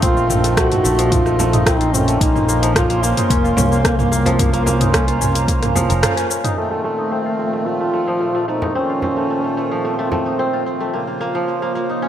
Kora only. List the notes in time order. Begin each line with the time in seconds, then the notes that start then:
Already playing: F3 A3 D#4
0.02 C4
0.17 F4
0.30 C4
0.44 A3
0.57 A3
0.71 A3
0.84 A3
0.98 F3
1.12 A3
1.26 A3
1.39 A3
1.53 D#4
1.66 C4
1.80 F4
1.94 C4
2.08 A3
2.21 A#3
2.35 A#3
2.48 A#3
2.62 F3
2.76 A#3
2.90 A#3
3.03 A#3
3.17 D#4
3.30 C#4
3.44 F4
3.57 C#4
3.72 A#3
3.85 A#3
3.99 A#3
4.12 A#3
4.26 F3
4.39 A#3
4.53 A#3
4.66 A#3
4.80 D#4
4.93 C#4
5.08 F4
5.21 C#4
5.35 A#3
5.48 A#3
5.62 A#3
5.75 F3
5.90 A#4
6.03 F4
6.17 C#4
6.30 C#4
6.44 D#4
6.57 A3
6.71 A3
6.84 A3
6.98 D#4
7.12 C4
7.26 F4
7.39 C4
7.53 A3
7.66 A3
7.80 A3
7.93 A3
8.08 F3
8.21 A3
8.35 A3
8.48 A3
8.62 D#4
8.75 C4
8.89 F4
9.03 C4
9.17 A3
9.30 A3
9.44 A3
9.57 A3
9.71 F3
9.85 A3
9.99 A3
10.12 A3
10.26 D#4
10.39 C4
10.53 F4
10.66 C4
10.80 A3
10.94 A#3
11.07 A#3
11.21 A#3
11.35 F3
11.48 A#3
11.62 A#3
11.75 A#3
11.89 D#4
12.02 C#4